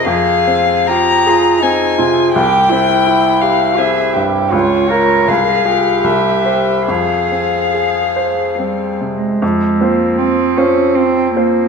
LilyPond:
<<
  \new Staff \with { instrumentName = "Violin" } { \time 3/4 \key f \minor \tempo 4 = 78 f''4 bes''4 aes''4 | g''4. f''8 e''8 r8 | des''4 f''4 e''4 | f''2~ f''8 r8 |
r4 f''4 f''4 | }
  \new Staff \with { instrumentName = "Cello" } { \time 3/4 \key f \minor aes'4 g'8 f'8 ees'8 f'8 | g'8 e'4. aes'8 g'8 | f'8 bes'8 aes'8 g'4. | aes'2 \tuplet 3/2 { g4 aes8~ } |
aes8 bes8 c'8 des'8 c'8 bes8 | }
  \new Staff \with { instrumentName = "Grand piano" } { \time 3/4 \key f \minor f,8 c'8 f'8 aes'8 c'8 c8 | c,8 c'8 e'8 g'8 c'8 g,8 | des,8 <f' bes'>8 c,8 <f' aes'>8 c,8 <g' c''>8 | f,8 c'8 aes'8 c''8 c'8 c8 |
f,8 <c' f' c''>4 <c' f' c''>4 <c' f' c''>8 | }
>>